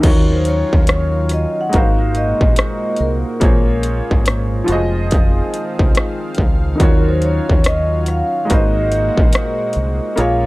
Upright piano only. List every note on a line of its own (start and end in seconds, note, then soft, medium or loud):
0.00 1.67 D#3 medium
0.00 1.68 D#4 medium
0.00 1.69 F4 medium
0.06 1.70 F#4 medium
0.06 1.71 C#5 medium
1.69 3.37 G#3 medium
1.69 3.38 D#4 medium
1.69 3.38 F#4 medium
1.75 3.40 A#4 medium
1.75 3.41 C5 medium
3.40 4.68 A#3 medium
3.40 4.65 F4 medium
3.40 4.69 G#4 medium
3.40 4.69 C5 medium
3.40 4.70 C#5 medium
4.64 6.74 F3 medium
4.64 6.75 F4 medium
4.64 4.77 F#4 medium
4.70 6.77 C5 medium
4.70 6.78 D#5 medium
4.75 6.79 G#4 medium
6.75 8.43 D#3 medium
6.75 8.44 D#4 medium
6.80 8.45 F4 medium
6.80 8.46 F#4 medium
6.80 8.47 C#5 medium
8.45 10.12 G#3 medium
8.45 10.13 D#4 medium
8.49 10.15 F#4 medium
8.49 10.16 A#4 medium
8.49 10.16 C5 medium
10.16 10.46 A#3 medium
10.16 10.46 F4 medium
10.16 10.46 G#4 medium
10.16 10.46 A#4 medium
10.16 10.46 C#5 medium